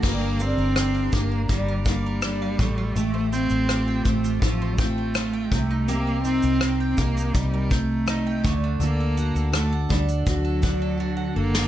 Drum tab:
CC |x---------------|----------------|----------------|----------------|
SH |--x-x-x-x-x-x-x-|x-xxx-xxx-x-x-x-|x-xxx-xxx-x-x-x-|x-xxx-xxx-x-----|
SD |----r-------r---|----r-r-----r---|----r-r-----r---|----r----------o|
BD |o-----o-o-o---o-|------o-o-o---o-|------o-o-o---o-|------o-o-o-----|